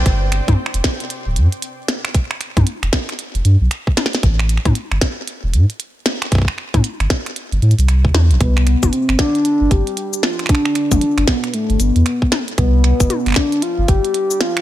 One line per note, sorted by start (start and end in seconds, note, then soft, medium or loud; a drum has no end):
0.06 0.41 G1 loud
0.06 kick loud
0.06 closed hi-hat medium
0.32 finger snap medium
0.32 closed hi-hat medium
0.48 0.55 G2 medium
0.48 kick loud
0.48 closed hi-hat medium
0.48 high tom medium
0.66 finger snap soft
0.74 0.81 F1 medium
0.74 closed hi-hat medium
0.84 kick loud
0.84 snare loud
0.84 closed hi-hat medium
1.00 closed hi-hat medium
1.10 closed hi-hat medium
1.26 1.38 D1 medium
1.36 1.48 G2 medium
1.36 closed hi-hat medium
1.52 closed hi-hat soft
1.62 closed hi-hat medium
1.88 snare loud
1.88 closed hi-hat medium
2.05 finger snap medium
2.15 kick loud
2.15 closed hi-hat medium
2.31 finger snap medium
2.41 finger snap soft
2.41 closed hi-hat medium
2.57 2.64 G2 medium
2.57 kick loud
2.57 closed hi-hat medium
2.57 high tom medium
2.67 closed hi-hat medium
2.83 2.90 F1 medium
2.83 finger snap soft
2.83 closed hi-hat soft
2.93 kick loud
2.93 snare loud
2.93 closed hi-hat medium
3.09 finger snap soft
3.09 closed hi-hat medium
3.19 closed hi-hat medium
3.35 3.42 F1 medium
3.35 closed hi-hat soft
3.45 3.57 G2 loud
3.45 closed hi-hat medium
3.61 3.68 B1 medium
3.71 finger snap medium
3.71 closed hi-hat medium
3.87 kick medium
3.97 snare loud
3.97 closed hi-hat medium
3.97 high tom medium
4.06 snare medium
4.13 snare medium
4.13 closed hi-hat medium
4.23 4.58 A1 loud
4.23 kick loud
4.23 closed hi-hat medium
4.39 finger snap medium
4.49 closed hi-hat medium
4.57 finger snap soft
4.65 4.73 A2 medium
4.65 kick loud
4.65 closed hi-hat medium
4.65 high tom medium
4.75 closed hi-hat medium
4.92 4.99 G1 medium
4.92 finger snap soft
5.01 kick loud
5.01 snare loud
5.01 closed hi-hat medium
5.28 closed hi-hat medium
5.44 5.55 E1 medium
5.54 5.65 A2 medium
5.54 closed hi-hat medium
5.70 closed hi-hat soft
5.80 closed hi-hat medium
6.06 snare loud
6.06 closed hi-hat medium
6.22 finger snap medium
6.22 closed hi-hat medium
6.32 kick loud
6.32 closed hi-hat medium
6.35 kick loud
6.38 kick medium
6.42 kick medium
6.45 finger snap medium
6.45 kick medium
6.58 finger snap soft
6.74 6.81 A2 medium
6.74 kick loud
6.74 closed hi-hat medium
6.74 high tom medium
6.84 closed hi-hat medium
7.00 7.07 G1 medium
7.00 finger snap soft
7.00 closed hi-hat soft
7.10 kick loud
7.10 snare loud
7.10 closed hi-hat medium
7.26 finger snap soft
7.26 closed hi-hat soft
7.36 closed hi-hat medium
7.52 7.60 G1 medium
7.52 closed hi-hat soft
7.62 7.74 A2 loud
7.62 closed hi-hat soft
7.71 closed hi-hat soft
7.79 8.06 C2 medium
7.79 closed hi-hat soft
7.79 closed hi-hat medium
7.88 finger snap soft
7.88 closed hi-hat medium
8.05 8.12 D2 medium
8.05 kick medium
8.14 8.32 E2 medium
8.14 snare loud
8.14 high tom medium
8.31 8.38 A1 medium
8.31 closed hi-hat soft
8.41 8.76 C2 loud
8.41 8.94 B3 loud
8.41 kick loud
8.41 closed hi-hat medium
8.57 finger snap medium
8.67 finger snap soft
8.67 closed hi-hat medium
8.83 8.90 G1 medium
8.83 kick loud
8.83 high tom medium
8.83 shaker medium
8.93 9.18 C4 loud
8.93 closed hi-hat medium
9.09 9.16 G1 medium
9.09 finger snap soft
9.09 closed hi-hat soft
9.19 9.73 D4 loud
9.19 kick loud
9.19 snare loud
9.19 closed hi-hat medium
9.35 closed hi-hat soft
9.45 closed hi-hat medium
9.61 9.68 G1 medium
9.71 9.83 G1 medium
9.71 10.25 G4 loud
9.71 kick loud
9.71 closed hi-hat medium
9.87 closed hi-hat soft
9.97 closed hi-hat medium
10.13 shaker medium
10.23 10.49 F4 loud
10.23 snare loud
10.39 finger snap soft
10.39 closed hi-hat soft
10.46 11.29 D4 loud
10.46 finger snap soft
10.46 kick loud
10.46 closed hi-hat medium
10.55 finger snap medium
10.65 finger snap medium
10.75 finger snap soft
10.75 closed hi-hat medium
10.92 10.99 G1 medium
10.92 kick loud
10.92 closed hi-hat soft
10.92 high tom medium
10.92 shaker medium
11.01 closed hi-hat medium
11.18 11.25 G1 medium
11.18 finger snap soft
11.18 closed hi-hat soft
11.28 11.55 B3 medium
11.28 kick loud
11.28 snare loud
11.28 closed hi-hat medium
11.44 finger snap soft
11.44 closed hi-hat soft
11.54 11.81 A3 medium
11.54 closed hi-hat medium
11.70 11.77 G1 medium
11.70 closed hi-hat soft
11.80 11.92 G1 loud
11.80 12.32 B3 medium
11.80 closed hi-hat medium
11.80 shaker medium
11.96 12.03 E2 medium
11.96 closed hi-hat soft
12.06 finger snap soft
12.06 closed hi-hat medium
12.22 kick medium
12.32 snare loud
12.32 closed hi-hat medium
12.32 high tom medium
12.48 closed hi-hat soft
12.58 12.93 C2 loud
12.58 13.38 B3 loud
12.58 kick loud
12.58 closed hi-hat medium
12.84 finger snap soft
12.84 closed hi-hat medium
13.00 13.07 G1 medium
13.00 kick loud
13.00 closed hi-hat medium
13.00 shaker medium
13.10 closed hi-hat medium
13.10 high tom medium
13.26 13.34 G1 medium
13.26 finger snap soft
13.26 closed hi-hat soft
13.28 finger snap soft
13.30 finger snap soft
13.32 finger snap soft
13.34 13.64 D4 loud
13.34 finger snap soft
13.34 kick loud
13.34 snare loud
13.34 closed hi-hat medium
13.52 closed hi-hat medium
13.62 13.90 F4 loud
13.62 closed hi-hat medium
13.78 13.86 G1 medium
13.88 14.00 G1 medium
13.88 14.42 G4 loud
13.88 kick loud
13.88 closed hi-hat medium
14.05 closed hi-hat soft
14.14 closed hi-hat medium
14.31 shaker medium
14.41 14.61 F4 loud
14.41 snare loud
14.41 closed hi-hat medium
14.57 finger snap medium
14.57 closed hi-hat soft